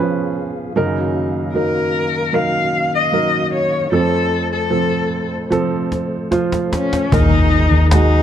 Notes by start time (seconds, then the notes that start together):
Already playing: C#2 G#2 F3 B3 C#4 F4 G#4 F5
0.00 B4
0.76 F#2 C#3 D#3 F#3 A#3 C#4 D#4 F#4 A#4
1.54 F#3 D#4 A#4
2.33 F#3 D#4 A#4 F5
2.95 D#5
3.12 F#3 D#4 A#4
3.54 C#5
3.92 F2 F3 A3 C4 A4 C5
4.53 A4
4.70 F3 C4 A4
5.50 F3 C4 A4, cajon slap
5.92 cajon slap
6.31 F3 F4 C5, cajon slap
6.52 cajon slap
6.73 C#4, cajon slap
6.93 cajon slap
7.12 D#2 A#2 G#3 D#4 G#4 A#4 D#5 A#5, cajon bass, impact
7.52 cajon slap
7.71 D#2
7.91 G#3 D#4 F#4, cajon slap